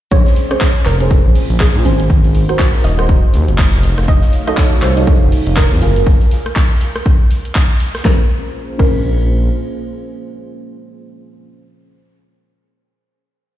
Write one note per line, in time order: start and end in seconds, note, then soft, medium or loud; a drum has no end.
0.11 0.24 A#1 loud
0.11 3.80 A#3 medium
0.11 0.45 C#4 loud
0.11 2.08 C#4 medium
0.11 2.08 F4 medium
0.11 3.80 G#4 medium
0.11 0.45 G#4 medium
0.11 3.80 C5 medium
0.11 0.45 C5 loud
0.11 0.34 C#5 loud
0.11 kick loud
0.11 closed hi-hat medium
0.11 shaker medium
0.11 shaker soft
0.26 snare medium
0.26 closed hi-hat soft
0.26 shaker soft
0.36 open hi-hat loud
0.36 shaker medium
0.50 0.97 C#4 medium
0.50 0.97 G#4 medium
0.50 0.97 C5 loud
0.50 0.72 C#5 medium
0.50 cross-stick medium
0.50 closed hi-hat medium
0.50 shaker soft
0.61 kick loud
0.61 snare loud
0.61 clap loud
0.61 closed hi-hat medium
0.61 shaker soft
0.61 shaker medium
0.76 closed hi-hat soft
0.76 shaker soft
0.86 1.21 F1 medium
0.86 1.08 A#4 loud
0.86 clap medium
0.86 open hi-hat medium
0.86 shaker medium
0.99 1.82 C#4 medium
0.99 1.83 G#4 medium
0.99 1.83 C5 loud
0.99 closed hi-hat medium
0.99 shaker soft
1.11 kick loud
1.11 closed hi-hat medium
1.11 shaker soft
1.11 shaker loud
1.25 1.34 A#1 medium
1.25 shaker soft
1.35 open hi-hat medium
1.35 open hi-hat loud
1.35 shaker medium
1.50 1.70 A#1 medium
1.50 closed hi-hat medium
1.50 shaker soft
1.60 1.82 G#4 loud
1.60 kick loud
1.60 snare loud
1.60 clap loud
1.60 closed hi-hat medium
1.60 shaker soft
1.60 shaker medium
1.75 1.87 A#2 medium
1.75 snare medium
1.75 closed hi-hat soft
1.75 shaker soft
1.85 2.45 G#1 medium
1.85 2.08 C#4 medium
1.85 2.09 G#4 medium
1.85 2.09 C5 loud
1.85 open hi-hat medium
1.85 shaker medium
2.00 closed hi-hat medium
2.00 shaker soft
2.10 5.78 D#4 medium
2.10 6.03 F#4 medium
2.10 kick loud
2.10 closed hi-hat medium
2.10 shaker soft
2.10 shaker medium
2.24 closed hi-hat soft
2.24 shaker soft
2.35 open hi-hat loud
2.35 shaker medium
2.49 2.95 F#4 medium
2.49 2.95 A#4 medium
2.49 2.96 C5 medium
2.49 cross-stick medium
2.49 closed hi-hat medium
2.49 shaker soft
2.59 kick loud
2.59 snare loud
2.59 clap loud
2.59 closed hi-hat medium
2.59 shaker medium
2.59 shaker soft
2.74 closed hi-hat soft
2.74 shaker soft
2.84 3.19 D#1 medium
2.84 4.00 D#5 loud
2.84 open hi-hat loud
2.84 shaker medium
2.98 3.82 F#4 medium
2.98 3.82 A#4 medium
2.98 3.83 C5 medium
2.98 cross-stick medium
2.98 closed hi-hat medium
2.98 shaker soft
3.09 kick loud
3.09 closed hi-hat medium
3.09 shaker soft
3.09 shaker medium
3.24 shaker soft
3.33 3.46 D#2 loud
3.33 open hi-hat loud
3.33 shaker medium
3.48 3.68 F#1 medium
3.48 closed hi-hat medium
3.48 shaker soft
3.58 kick loud
3.58 snare loud
3.58 clap loud
3.58 closed hi-hat medium
3.58 shaker medium
3.58 shaker soft
3.73 3.93 F1 loud
3.73 closed hi-hat soft
3.73 shaker soft
3.83 5.80 A3 medium
3.83 6.04 C#5 medium
3.83 6.04 F5 medium
3.83 open hi-hat loud
3.83 shaker medium
3.98 4.06 F1 loud
3.98 cross-stick medium
3.98 snare soft
3.98 closed hi-hat medium
3.98 shaker soft
4.08 4.20 F1 loud
4.08 4.30 D#5 loud
4.08 kick loud
4.08 closed hi-hat medium
4.08 shaker soft
4.08 shaker medium
4.22 snare medium
4.22 closed hi-hat soft
4.22 shaker soft
4.33 open hi-hat loud
4.33 shaker medium
4.47 4.93 D#4 medium
4.47 4.94 F#4 medium
4.47 4.94 A4 medium
4.47 4.94 C#5 loud
4.47 4.68 D#5 medium
4.47 cross-stick medium
4.47 closed hi-hat medium
4.47 shaker soft
4.57 kick loud
4.57 snare loud
4.57 clap loud
4.57 closed hi-hat medium
4.57 shaker medium
4.57 shaker soft
4.72 closed hi-hat soft
4.72 shaker soft
4.82 5.18 C2 medium
4.82 5.04 C5 medium
4.82 clap medium
4.82 open hi-hat medium
4.82 shaker medium
4.96 5.79 D#4 medium
4.96 5.79 F#4 medium
4.96 5.79 A4 medium
4.96 5.80 C#5 loud
4.96 closed hi-hat medium
4.96 shaker soft
5.07 kick loud
5.07 closed hi-hat medium
5.07 shaker soft
5.07 shaker medium
5.22 5.30 F1 medium
5.22 shaker soft
5.32 open hi-hat loud
5.32 open hi-hat medium
5.32 shaker medium
5.47 5.66 F1 medium
5.47 closed hi-hat medium
5.47 shaker soft
5.57 5.79 A#4 loud
5.57 kick loud
5.57 snare loud
5.57 clap loud
5.57 closed hi-hat medium
5.57 shaker soft
5.57 shaker medium
5.71 5.83 F2 medium
5.71 snare medium
5.71 closed hi-hat soft
5.71 shaker soft
5.81 6.03 F#1 medium
5.81 6.06 A#3 medium
5.81 6.09 F4 medium
5.81 6.10 G#4 medium
5.81 6.06 G#4 medium
5.81 6.10 A#4 loud
5.81 open hi-hat loud
5.81 shaker medium
5.96 closed hi-hat medium
5.96 shaker soft
6.07 kick loud
6.07 closed hi-hat medium
6.07 shaker soft
6.07 shaker medium
6.21 closed hi-hat soft
6.21 shaker soft
6.31 open hi-hat loud
6.31 shaker medium
6.46 cross-stick medium
6.46 closed hi-hat medium
6.46 shaker soft
6.55 kick loud
6.55 snare loud
6.55 clap loud
6.55 closed hi-hat medium
6.55 shaker medium
6.55 shaker soft
6.71 closed hi-hat soft
6.71 shaker soft
6.81 open hi-hat loud
6.81 shaker medium
6.96 cross-stick medium
6.96 closed hi-hat medium
6.96 shaker soft
7.06 kick loud
7.06 closed hi-hat medium
7.06 shaker medium
7.06 shaker soft
7.21 shaker soft
7.31 open hi-hat loud
7.31 shaker medium
7.45 closed hi-hat medium
7.45 shaker soft
7.55 kick loud
7.55 snare loud
7.55 clap loud
7.55 closed hi-hat medium
7.55 shaker loud
7.55 shaker soft
7.70 closed hi-hat soft
7.70 shaker soft
7.80 open hi-hat loud
7.80 shaker medium
7.95 cross-stick medium
7.95 snare medium
7.95 closed hi-hat medium
7.95 shaker soft
8.03 8.20 A#1 loud
8.03 11.45 A#3 medium
8.03 8.20 C#4 medium
8.03 11.45 C#4 medium
8.03 11.45 F4 medium
8.03 11.45 G#4 medium
8.03 8.20 G#4 medium
8.03 8.20 A#4 medium
8.03 11.45 C5 medium
8.03 8.21 C5 medium
8.03 kick loud
8.03 snare medium
8.78 9.50 A#1 loud
8.78 12.17 C#4 medium
8.78 12.19 G#4 medium
8.78 12.19 A#4 medium
8.78 12.21 C5 loud
8.78 kick loud
8.78 crash medium